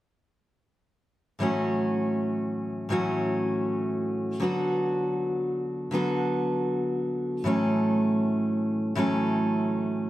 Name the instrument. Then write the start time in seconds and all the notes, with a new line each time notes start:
steel-string acoustic guitar
1.39 A2 E3 F#3 A3 C#4 F#4
2.89 A2 E3 F#3 A3 C#4
2.93 F#4
4.40 D3 F#3 B3 F#4
4.44 A4
5.91 D3 F#3 B3 F#4 A4
7.44 A2 E3 F#3 A3 C#4
7.48 A4
8.95 A2 E3 F#3 A3 C#4
8.99 A4